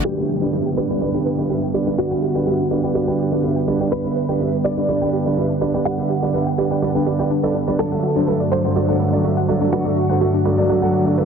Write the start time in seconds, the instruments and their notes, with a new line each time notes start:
0.05 grand piano G2 G3 D4 B4 D5, analog synth pad D3 G3 B3 B4, synth pluck G4, clean electric guitar G4, downlifter
0.18 grand piano G2 G3 D4 B4 E5, synth pluck G5
0.29 synth pluck G4, closed hi-hat
0.42 grand piano G2 G3 D4 B4 D5, synth pluck D4, closed hi-hat
0.53 grand piano G2 G3 D4 B4 E5, synth pluck B4, closed hi-hat
0.66 synth pluck G5, closed hi-hat
0.77 grand piano G2 G3 D4 B4 D5, synth pluck G4, clean electric guitar B4, closed hi-hat
0.90 grand piano G2 G3 D4 B4 D5, synth pluck G5, closed hi-hat
1.01 grand piano G2 G3 D4 B4 D5, synth pluck G4, closed hi-hat
1.14 grand piano G2 G3 D4 B4 G5, synth pluck D4, closed hi-hat
1.26 synth pluck B4, closed hi-hat
1.38 grand piano G2 G3 D4 B4 D5, synth pluck G5, closed hi-hat
1.50 grand piano G2 G3 D4 B4 E5, synth pluck G4, closed hi-hat
1.63 synth pluck G5, closed hi-hat
1.74 grand piano G2 G3 D4 B4 D5, synth pluck G4, closed hi-hat
1.87 grand piano G2 G3 D4 B4 D5, synth pluck D4, closed hi-hat
1.98 grand piano G2 G3 D4 B4 D5, clean electric guitar F#4, synth pluck B4, closed hi-hat
2.11 grand piano G2 G3 D4 B4 E5, synth pluck G5, closed hi-hat
2.22 synth pluck G4, closed hi-hat
2.35 grand piano G2 G3 D4 B4 D5, synth pluck G5, closed hi-hat
2.47 grand piano G2 G3 D4 B4 E5, synth pluck G4, closed hi-hat
2.59 synth pluck D4, closed hi-hat
2.71 grand piano G2 G3 D4 B4 D5, synth pluck B4, closed hi-hat
2.84 grand piano G2 G3 D4 B4 D5, synth pluck G5, closed hi-hat
2.95 grand piano G2 G3 D4 B4 D5, synth pluck G4, closed hi-hat
3.08 grand piano G2 G3 D4 B4 G5, synth pluck G5, closed hi-hat
3.19 synth pluck G4, closed hi-hat
3.32 grand piano G2 G3 D4 B4 D5, synth pluck D4, closed hi-hat
3.43 grand piano G2 G3 D4 B4 E5, synth pluck B4, closed hi-hat
3.56 synth pluck G5, closed hi-hat
3.68 grand piano G2 G3 D4 B4 D5, synth pluck G4, closed hi-hat
3.80 grand piano G2 G3 D4 B4 D5, synth pluck G5, closed hi-hat
3.92 grand piano G2 G3 D4 B4 D5, synth pluck G4, clean electric guitar B4, closed hi-hat
4.05 grand piano G2 G3 D4 B4 E5, synth pluck D4, closed hi-hat
4.16 synth pluck B4, closed hi-hat
4.29 grand piano G2 G3 D4 B4 D5, synth pluck G5, closed hi-hat
4.40 grand piano G2 G3 D4 B4 E5, synth pluck G4, closed hi-hat
4.53 synth pluck G5, closed hi-hat
4.64 grand piano G2 G3 D4 B4 D5, synth pluck G4, clean electric guitar D5, closed hi-hat
4.77 grand piano G2 G3 D4 B4 D5, synth pluck D4, closed hi-hat
4.89 grand piano G2 G3 D4 B4 D5, synth pluck B4, closed hi-hat
5.01 grand piano G2 G3 D4 B4 G5, synth pluck G5, closed hi-hat
5.13 synth pluck G4, closed hi-hat
5.26 grand piano G2 G3 D4 B4 D5, synth pluck G5, closed hi-hat
5.37 grand piano G2 G3 D4 B4 E5, synth pluck G4, closed hi-hat
5.50 synth pluck D4, closed hi-hat
5.61 grand piano G2 G3 D4 B4 D5, synth pluck B4, closed hi-hat
5.74 grand piano G2 G3 D4 B4 D5, synth pluck G5, closed hi-hat
5.85 grand piano G2 G3 D4 B4 D5, synth pluck G4, clean electric guitar F#5, closed hi-hat
5.98 grand piano G2 G3 D4 B4 E5, synth pluck G5, closed hi-hat
6.10 synth pluck G4, closed hi-hat
6.22 grand piano G2 G3 D4 B4 D5, synth pluck D4, closed hi-hat
6.34 grand piano G2 G3 D4 B4 E5, synth pluck B4, closed hi-hat
6.47 synth pluck G5, closed hi-hat
6.58 grand piano G2 G3 D4 B4 D5, synth pluck G4, closed hi-hat
6.71 grand piano G2 G3 D4 B4 D5, synth pluck G5, closed hi-hat
6.82 grand piano G2 G3 D4 B4 D5, synth pluck G4, closed hi-hat
6.95 grand piano G2 G3 D4 B4 G5, synth pluck D4, closed hi-hat
7.06 grand piano G2 G3 D4 B4 D5, synth pluck G4, closed hi-hat
7.19 grand piano G2 G3 D4 B4 D5, synth pluck G5, closed hi-hat
7.31 synth pluck D4, closed hi-hat
7.43 grand piano G2 G3 D4 B4 D5, synth pluck A4, closed hi-hat
7.55 synth pluck D4, closed hi-hat
7.68 grand piano G3 D4 B4 D5, synth pluck D5, closed hi-hat
7.79 grand piano G2 F#3 D4 A4 D5, analog synth pad G2 F#3 A3 F#4, synth pluck F#4, clean electric guitar A4, closed hi-hat
7.92 grand piano G2 F#3 D4 A4 E5, synth pluck F#5, closed hi-hat
8.03 synth pluck F#4, closed hi-hat
8.16 grand piano G2 F#3 D4 A4 C5, synth pluck D4, closed hi-hat
8.27 grand piano G2 F#3 D4 A4 E5, synth pluck B4, closed hi-hat
8.40 synth pluck D5, closed hi-hat
8.52 grand piano G2 F#3 D4 A4 D5, synth pluck F#4, clean electric guitar C5, closed hi-hat
8.64 grand piano G2 F#3 D4 A4 D5, synth pluck F#5, closed hi-hat
8.76 grand piano G2 F#3 D4 A4 D5, synth pluck F#4, closed hi-hat
8.89 grand piano G2 F#3 D4 A4 F#5, synth pluck D4, closed hi-hat
9.00 synth pluck B4, closed hi-hat
9.13 grand piano G2 F#3 D4 A4 D5, synth pluck D5, closed hi-hat
9.24 grand piano G2 F#3 D4 A4 E5, synth pluck F#4, closed hi-hat
9.37 synth pluck F#5, closed hi-hat
9.48 grand piano G2 F#3 D4 A4 D5, synth pluck F#4, closed hi-hat
9.61 grand piano G2 F#3 D4 A4 D5, synth pluck D4, closed hi-hat
9.72 grand piano G2 F#3 D4 A4 D5, clean electric guitar F#4, synth pluck B4, closed hi-hat
9.85 grand piano G2 F#3 D4 A4 E5, synth pluck D5, closed hi-hat
9.97 synth pluck F#4, closed hi-hat
10.09 grand piano G2 F#3 D4 A4 C5, synth pluck F#5, closed hi-hat
10.21 grand piano G2 F#3 D4 A4 E5, synth pluck F#4, closed hi-hat
10.34 synth pluck D4, closed hi-hat
10.45 grand piano G2 F#3 D4 A4 D5, synth pluck B4, closed hi-hat
10.58 grand piano G2 F#3 D4 A4 D5, synth pluck D5, closed hi-hat
10.69 grand piano G2 F#3 D4 A4 D5, synth pluck F#4, closed hi-hat
10.82 grand piano G2 F#3 D4 A4 F#5, synth pluck F#5, closed hi-hat
10.93 synth pluck F#4, closed hi-hat
11.06 grand piano G2 F#3 D4 A4 D5, synth pluck D4, closed hi-hat
11.18 grand piano G2 F#3 D4 A4 E5, synth pluck B4, closed hi-hat